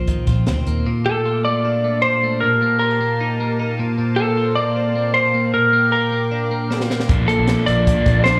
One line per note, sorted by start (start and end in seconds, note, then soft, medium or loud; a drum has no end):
0.00 0.15 A#1 medium
0.00 0.85 A#2 medium
0.00 0.67 A#3 medium
0.00 0.46 C4 medium
0.00 0.27 F4 medium
0.08 0.91 D#3 medium
0.08 kick medium
0.08 closed hi-hat medium
0.27 0.44 A#1 medium
0.27 1.25 F4 medium
0.27 kick medium
0.27 snare soft
0.27 closed hi-hat medium
0.47 0.64 D2 medium
0.47 0.90 C4 medium
0.47 snare medium
0.47 closed hi-hat medium
0.67 0.84 D#2 medium
0.67 1.06 A#3 medium
0.67 closed hi-hat medium
0.86 2.42 A#2 medium
0.86 2.41 A3 medium
0.86 2.41 F5 medium
0.86 5.50 A5 medium
0.86 2.41 D6 medium
1.06 1.44 A3 medium
1.06 1.42 A4 medium
1.25 2.81 F4 medium
1.45 1.83 A3 medium
1.45 2.02 D5 loud
1.65 2.03 D4 medium
1.84 2.22 A3 medium
2.02 2.47 D4 medium
2.02 2.39 C5 loud
2.24 2.47 A3 medium
2.40 3.78 A#2 medium
2.40 5.51 A#3 medium
2.40 3.78 G4 medium
2.40 2.78 A#4 medium
2.40 8.40 F5 medium
2.62 3.00 A#3 medium
2.79 2.91 F4 medium
2.79 3.74 A#4 medium
2.91 3.83 G4 medium
3.01 3.40 A#3 medium
3.21 3.58 D#4 medium
3.40 4.17 A#3 medium
3.60 3.83 D#4 medium
3.79 3.97 A#2 medium
3.79 5.52 C5 medium
3.98 5.53 A#2 medium
4.16 4.56 A#3 medium
4.16 4.53 A4 medium
4.37 5.92 F4 medium
4.55 4.95 A#3 medium
4.55 5.13 D5 loud
4.76 5.14 C4 medium
4.95 5.34 A#3 medium
5.14 5.58 C4 medium
5.14 5.51 C5 loud
5.34 5.73 A#3 medium
5.54 7.08 A#2 medium
5.54 5.91 A#4 medium
5.54 7.08 A#4 medium
5.54 7.08 G5 medium
5.54 7.06 D6 medium
5.73 6.12 A#3 medium
5.92 7.13 G4 medium
5.92 6.85 A#4 medium
6.12 6.51 A#3 medium
6.32 6.69 D4 medium
6.51 6.90 A#3 medium
6.71 7.13 D4 medium
6.71 snare medium
6.80 snare medium
6.90 7.28 A#3 medium
6.90 snare medium
7.00 snare medium
7.07 7.26 A#1 loud
7.07 8.40 A#2 medium
7.07 7.39 A#2 loud
7.07 7.39 F3 loud
7.07 7.39 A3 loud
7.07 8.40 A#3 medium
7.07 7.38 D4 medium
7.07 8.40 A5 medium
7.07 8.40 D6 medium
7.07 kick loud
7.07 closed hi-hat medium
7.11 7.37 F4 medium
7.28 7.67 A#3 medium
7.28 7.64 A4 medium
7.28 closed hi-hat medium
7.38 7.55 A#1 medium
7.38 7.66 A3 soft
7.38 7.67 D4 soft
7.38 7.67 F4 medium
7.48 8.40 A4 medium
7.48 snare loud
7.48 closed hi-hat medium
7.66 7.93 A#1 loud
7.66 7.96 F3 medium
7.66 7.97 A3 medium
7.66 8.06 A#3 medium
7.66 7.96 D4 medium
7.66 7.95 F4 medium
7.66 8.21 D5 loud
7.66 closed hi-hat medium
7.86 8.24 D4 medium
7.86 kick medium
7.86 closed hi-hat loud
7.96 8.24 A3 soft
7.96 8.25 D4 soft
7.96 8.25 F4 medium
8.06 8.39 A#1 loud
8.06 8.40 A#3 medium
8.06 kick medium
8.06 snare soft
8.06 closed hi-hat medium
8.24 8.40 F3 medium
8.24 8.40 A3 medium
8.24 8.40 D4 medium
8.24 8.40 F4 medium
8.24 8.40 C5 medium
8.24 snare loud
8.24 closed hi-hat medium